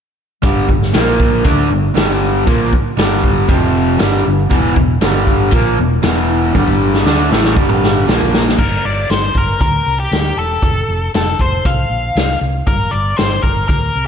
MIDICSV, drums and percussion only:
0, 0, Header, 1, 2, 480
1, 0, Start_track
1, 0, Tempo, 509771
1, 413, Time_signature, 4, 2, 24, 8
1, 13254, End_track
2, 0, Start_track
2, 0, Title_t, "Drums"
2, 408, Note_on_c, 9, 42, 61
2, 409, Note_on_c, 9, 36, 102
2, 502, Note_off_c, 9, 42, 0
2, 503, Note_off_c, 9, 36, 0
2, 647, Note_on_c, 9, 36, 71
2, 741, Note_off_c, 9, 36, 0
2, 773, Note_on_c, 9, 38, 31
2, 867, Note_off_c, 9, 38, 0
2, 882, Note_on_c, 9, 42, 70
2, 890, Note_on_c, 9, 38, 98
2, 976, Note_off_c, 9, 42, 0
2, 984, Note_off_c, 9, 38, 0
2, 1128, Note_on_c, 9, 36, 76
2, 1222, Note_off_c, 9, 36, 0
2, 1359, Note_on_c, 9, 42, 71
2, 1366, Note_on_c, 9, 36, 109
2, 1453, Note_off_c, 9, 42, 0
2, 1460, Note_off_c, 9, 36, 0
2, 1851, Note_on_c, 9, 42, 66
2, 1860, Note_on_c, 9, 38, 110
2, 1945, Note_off_c, 9, 42, 0
2, 1954, Note_off_c, 9, 38, 0
2, 2327, Note_on_c, 9, 36, 104
2, 2328, Note_on_c, 9, 42, 66
2, 2422, Note_off_c, 9, 36, 0
2, 2422, Note_off_c, 9, 42, 0
2, 2568, Note_on_c, 9, 36, 70
2, 2662, Note_off_c, 9, 36, 0
2, 2810, Note_on_c, 9, 42, 61
2, 2818, Note_on_c, 9, 38, 109
2, 2904, Note_off_c, 9, 42, 0
2, 2912, Note_off_c, 9, 38, 0
2, 3047, Note_on_c, 9, 36, 73
2, 3141, Note_off_c, 9, 36, 0
2, 3283, Note_on_c, 9, 42, 65
2, 3284, Note_on_c, 9, 36, 108
2, 3377, Note_off_c, 9, 42, 0
2, 3379, Note_off_c, 9, 36, 0
2, 3760, Note_on_c, 9, 42, 66
2, 3768, Note_on_c, 9, 38, 110
2, 3854, Note_off_c, 9, 42, 0
2, 3862, Note_off_c, 9, 38, 0
2, 4245, Note_on_c, 9, 42, 66
2, 4247, Note_on_c, 9, 36, 101
2, 4340, Note_off_c, 9, 42, 0
2, 4341, Note_off_c, 9, 36, 0
2, 4485, Note_on_c, 9, 36, 78
2, 4579, Note_off_c, 9, 36, 0
2, 4718, Note_on_c, 9, 42, 68
2, 4726, Note_on_c, 9, 38, 95
2, 4812, Note_off_c, 9, 42, 0
2, 4821, Note_off_c, 9, 38, 0
2, 4963, Note_on_c, 9, 36, 79
2, 5057, Note_off_c, 9, 36, 0
2, 5188, Note_on_c, 9, 42, 76
2, 5201, Note_on_c, 9, 36, 101
2, 5283, Note_off_c, 9, 42, 0
2, 5295, Note_off_c, 9, 36, 0
2, 5675, Note_on_c, 9, 42, 73
2, 5683, Note_on_c, 9, 38, 98
2, 5769, Note_off_c, 9, 42, 0
2, 5777, Note_off_c, 9, 38, 0
2, 6166, Note_on_c, 9, 48, 60
2, 6167, Note_on_c, 9, 36, 98
2, 6260, Note_off_c, 9, 48, 0
2, 6261, Note_off_c, 9, 36, 0
2, 6287, Note_on_c, 9, 36, 51
2, 6381, Note_off_c, 9, 36, 0
2, 6535, Note_on_c, 9, 38, 52
2, 6629, Note_off_c, 9, 38, 0
2, 6649, Note_on_c, 9, 38, 64
2, 6743, Note_off_c, 9, 38, 0
2, 6895, Note_on_c, 9, 38, 75
2, 6989, Note_off_c, 9, 38, 0
2, 7012, Note_on_c, 9, 38, 74
2, 7107, Note_off_c, 9, 38, 0
2, 7124, Note_on_c, 9, 36, 104
2, 7218, Note_off_c, 9, 36, 0
2, 7242, Note_on_c, 9, 45, 75
2, 7337, Note_off_c, 9, 45, 0
2, 7380, Note_on_c, 9, 38, 81
2, 7475, Note_off_c, 9, 38, 0
2, 7617, Note_on_c, 9, 38, 99
2, 7712, Note_off_c, 9, 38, 0
2, 7728, Note_on_c, 9, 43, 68
2, 7822, Note_off_c, 9, 43, 0
2, 7855, Note_on_c, 9, 38, 99
2, 7950, Note_off_c, 9, 38, 0
2, 7984, Note_on_c, 9, 38, 80
2, 8078, Note_off_c, 9, 38, 0
2, 8085, Note_on_c, 9, 36, 88
2, 8085, Note_on_c, 9, 49, 76
2, 8179, Note_off_c, 9, 36, 0
2, 8179, Note_off_c, 9, 49, 0
2, 8569, Note_on_c, 9, 42, 54
2, 8578, Note_on_c, 9, 38, 92
2, 8663, Note_off_c, 9, 42, 0
2, 8672, Note_off_c, 9, 38, 0
2, 8805, Note_on_c, 9, 36, 67
2, 8899, Note_off_c, 9, 36, 0
2, 9046, Note_on_c, 9, 36, 96
2, 9054, Note_on_c, 9, 42, 58
2, 9140, Note_off_c, 9, 36, 0
2, 9148, Note_off_c, 9, 42, 0
2, 9530, Note_on_c, 9, 42, 53
2, 9539, Note_on_c, 9, 38, 94
2, 9624, Note_off_c, 9, 42, 0
2, 9633, Note_off_c, 9, 38, 0
2, 10004, Note_on_c, 9, 36, 93
2, 10005, Note_on_c, 9, 42, 51
2, 10098, Note_off_c, 9, 36, 0
2, 10099, Note_off_c, 9, 42, 0
2, 10490, Note_on_c, 9, 42, 50
2, 10499, Note_on_c, 9, 38, 94
2, 10584, Note_off_c, 9, 42, 0
2, 10593, Note_off_c, 9, 38, 0
2, 10729, Note_on_c, 9, 36, 70
2, 10823, Note_off_c, 9, 36, 0
2, 10972, Note_on_c, 9, 36, 103
2, 10978, Note_on_c, 9, 42, 54
2, 11066, Note_off_c, 9, 36, 0
2, 11072, Note_off_c, 9, 42, 0
2, 11454, Note_on_c, 9, 42, 53
2, 11463, Note_on_c, 9, 38, 92
2, 11548, Note_off_c, 9, 42, 0
2, 11557, Note_off_c, 9, 38, 0
2, 11588, Note_on_c, 9, 38, 27
2, 11682, Note_off_c, 9, 38, 0
2, 11926, Note_on_c, 9, 42, 51
2, 11930, Note_on_c, 9, 36, 96
2, 12020, Note_off_c, 9, 42, 0
2, 12024, Note_off_c, 9, 36, 0
2, 12408, Note_on_c, 9, 42, 52
2, 12416, Note_on_c, 9, 38, 97
2, 12502, Note_off_c, 9, 42, 0
2, 12510, Note_off_c, 9, 38, 0
2, 12650, Note_on_c, 9, 36, 78
2, 12744, Note_off_c, 9, 36, 0
2, 12891, Note_on_c, 9, 36, 102
2, 12894, Note_on_c, 9, 42, 54
2, 12985, Note_off_c, 9, 36, 0
2, 12988, Note_off_c, 9, 42, 0
2, 13254, End_track
0, 0, End_of_file